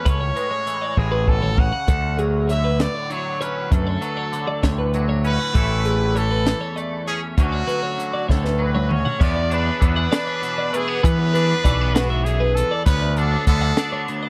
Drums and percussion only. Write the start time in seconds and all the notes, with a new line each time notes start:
0.06 kick, closed hi-hat
0.36 closed hi-hat
0.67 closed hi-hat
0.97 kick
1.28 kick
1.42 mid tom
1.58 kick
1.88 kick, closed hi-hat
2.19 closed hi-hat
2.49 closed hi-hat
2.80 snare, closed hi-hat
3.10 closed hi-hat
3.41 closed hi-hat
3.72 kick, closed hi-hat
4.02 closed hi-hat
4.33 closed hi-hat
4.63 kick, snare, closed hi-hat
4.94 closed hi-hat
5.25 closed hi-hat
5.55 kick, closed hi-hat
5.85 closed hi-hat
6.16 closed hi-hat
6.46 snare, closed hi-hat
6.77 closed hi-hat
7.07 closed hi-hat
7.38 kick, closed hi-hat
7.69 closed hi-hat
8.00 closed hi-hat
8.29 kick, snare
8.45 snare
8.75 mid tom
8.91 mid tom
9.06 floor tom
9.21 kick, crash
9.51 closed hi-hat
9.82 kick, closed hi-hat
10.12 snare, closed hi-hat
10.43 closed hi-hat
10.74 closed hi-hat
11.04 kick, closed hi-hat
11.35 closed hi-hat
11.65 kick, closed hi-hat
11.96 snare, closed hi-hat
12.26 closed hi-hat
12.57 closed hi-hat
12.86 kick, closed hi-hat
13.17 closed hi-hat
13.47 kick, closed hi-hat
13.77 snare, closed hi-hat
14.08 closed hi-hat